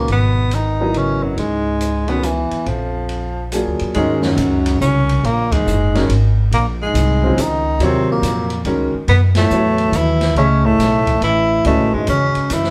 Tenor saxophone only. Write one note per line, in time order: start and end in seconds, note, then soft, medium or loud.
0.00 0.11 A#3 medium
0.12 0.56 B3 medium
0.55 0.99 D#4 medium
0.98 1.24 C#4 medium
1.23 1.38 F#3 medium
1.39 2.11 G#3 medium
2.09 2.26 B3 medium
2.25 2.69 E3 medium
2.67 3.53 F3 medium
3.95 4.25 G#3 medium
4.24 4.81 F#3 medium
4.81 5.27 C#4 medium
5.25 5.54 A#3 medium
5.52 6.10 G#3 medium
6.54 6.66 A#3 medium
6.82 7.42 G#3 medium
7.41 7.86 D#4 medium
7.84 8.10 C4 medium
8.12 8.64 A#3 medium
9.09 9.21 B3 medium
9.37 9.98 A3 medium
9.96 10.37 E4 medium
10.38 10.67 C#4 medium
10.66 11.23 A3 medium
11.24 11.63 E4 medium
11.67 11.96 A3 medium
11.94 12.09 G#3 medium
12.09 12.55 C#4 medium
12.53 12.70 E4 medium